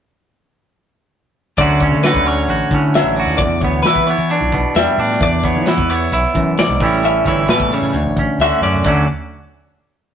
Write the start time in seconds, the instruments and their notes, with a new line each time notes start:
1.58 picked electric bass D2, clean electric guitar D2 D3 F#3 C#4 F#4 D5, kick, closed hi-hat
1.80 clean electric guitar C#4 C#5, kick, closed hi-hat
1.91 picked electric bass D3
2.03 clean electric guitar D3 F#4 B4, snare, closed hi-hat
2.14 picked electric bass D2, kick
2.26 clean electric guitar C#4 C#5, open hi-hat
2.48 picked electric bass A1, clean electric guitar F#4, closed hi-hat
2.70 clean electric guitar A2, picked electric bass D3, kick, closed hi-hat
2.75 clean electric guitar C#4
2.94 clean electric guitar F#3 E5, snare, closed hi-hat
3.04 picked electric bass A1
3.16 clean electric guitar F#4 D5, open hi-hat
3.27 picked electric bass D#2, snare
3.38 picked electric bass E2, clean electric guitar E2 D5, kick, closed hi-hat
3.61 picked electric bass D2, clean electric guitar B3 C#5, kick, closed hi-hat
3.83 picked electric bass E3, clean electric guitar E3 B4, snare, closed hi-hat
3.87 clean electric guitar E4
3.95 kick
4.07 clean electric guitar B3 C#5, open hi-hat
4.18 picked electric bass E3
4.29 clean electric guitar D4, closed hi-hat
4.41 picked electric bass B1
4.52 clean electric guitar B2 B3, kick, closed hi-hat
4.75 picked electric bass E2, clean electric guitar G3 E5, snare, closed hi-hat
4.98 picked electric bass A2, clean electric guitar D4 D5, open hi-hat
5.11 snare
5.21 picked electric bass E2, clean electric guitar E2 D5, kick, closed hi-hat
5.43 clean electric guitar B3 C#5, kick, closed hi-hat
5.55 picked electric bass E3
5.66 clean electric guitar E3 E4 B4, snare, closed hi-hat
5.77 picked electric bass E2, kick
5.90 clean electric guitar B3 C#5, open hi-hat
6.12 picked electric bass B1, clean electric guitar E4, closed hi-hat
6.35 clean electric guitar F#2, picked electric bass E3, kick, closed hi-hat
6.58 clean electric guitar G#2 D5, snare, closed hi-hat
6.69 picked electric bass B1
6.80 picked electric bass A1, clean electric guitar A2 E3 G3 C#4 C#5, kick, open hi-hat
6.85 clean electric guitar E4
7.03 clean electric guitar C#4 E5, closed hi-hat
7.25 picked electric bass G1, clean electric guitar E3 E4 C#5, kick, closed hi-hat
7.48 picked electric bass A2, clean electric guitar B2 B4, snare, closed hi-hat
7.60 kick
7.71 clean electric guitar C#3 C#5, open hi-hat
7.83 picked electric bass A2
7.93 picked electric bass D2, clean electric guitar D2, closed hi-hat
8.05 picked electric bass A1
8.17 clean electric guitar C#4, kick, closed hi-hat
8.39 picked electric bass D2, clean electric guitar D3 F#4 E5, snare
8.61 picked electric bass F#2, clean electric guitar C#4 D5, mid tom
8.74 floor tom
8.84 picked electric bass D2, clean electric guitar D2 D3 F#3 C#4 F#4 D5, kick, floor tom, ride bell